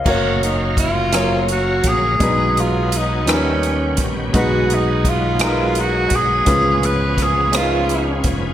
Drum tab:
CC |x-----|------|------|------|
HH |-xxxxx|xxxxxx|xxxxxx|xxxxxx|
SD |---r--|---r--|---r--|--rr--|
BD |o-o--o|o----o|o-o--o|o-o--o|